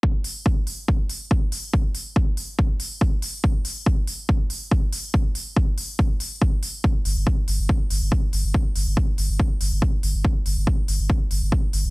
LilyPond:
<<
  \new Staff \with { instrumentName = "Sub bass" } { \clef bass \time 4/4 \key c \dorian \tempo 4 = 141 r1 | r1 | r1 | r1 |
r8 g,,16 g,,16 r8 g,,16 g,,16 r8 g,,16 g,,16 r8 g,,16 g,,16 | r8 g,,16 g,,16 r8 g,,16 g,,16 r8 g,,16 g,,16 r8 g,,16 g,,16 | r8 g,,16 g,,16 r8 g,,16 g,,16 r8 g,,16 g,,16 r8 g,,16 g,,16 | }
  \new DrumStaff \with { instrumentName = "Drums" } \drummode { \time 4/4 bd8 hho8 bd8 hho8 bd8 hho8 bd8 hho8 | bd8 hho8 bd8 hho8 bd8 hho8 bd8 hho8 | bd8 hho8 bd8 hho8 bd8 hho8 bd8 hho8 | bd8 hho8 bd8 hho8 bd8 hho8 bd8 hho8 |
bd8 hho8 bd8 hho8 bd8 hho8 bd8 hho8 | bd8 hho8 bd8 hho8 bd8 hho8 bd8 hho8 | bd8 hho8 bd8 hho8 bd8 hho8 bd8 hho8 | }
>>